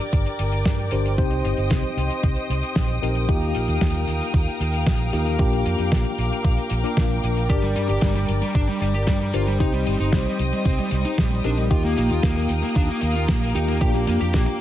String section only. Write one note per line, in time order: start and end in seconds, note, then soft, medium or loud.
0.00 1.16 A#4 medium
0.00 1.16 D5 medium
0.00 11.67 G5 medium
0.00 1.16 D6 medium
1.18 3.27 C5 medium
1.18 3.27 D#5 medium
1.18 5.35 D#6 medium
3.29 9.56 A#4 medium
3.29 7.46 F5 medium
5.39 9.56 D6 medium
7.50 9.58 D5 medium
9.60 11.69 C5 medium
9.60 11.69 D#5 medium
9.60 11.69 D#6 medium
11.71 14.61 A#4 medium
11.71 14.61 F5 medium
11.71 14.61 G5 medium
11.71 13.79 D#6 medium
13.81 14.61 D6 medium